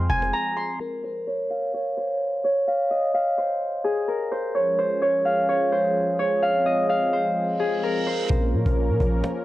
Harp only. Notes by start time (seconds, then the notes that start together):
Already playing: C6 D#6 F6
0.10 G#5
0.33 A#5
0.57 C6
0.80 A#4
1.03 C5
1.27 C#5
1.50 F5
1.74 C#5
1.97 C5
2.44 C#5
2.68 F5
2.91 D#5
3.14 F5
3.38 C5
3.84 G#4
4.08 A#4
4.32 C5
4.55 C#5
4.79 C5
5.02 C#5
5.25 F5
5.49 C#5
5.72 C5
6.19 C#5
6.42 F5
6.66 D#5
6.89 F5
7.13 C5
7.60 G#4
7.83 A#4
8.07 C5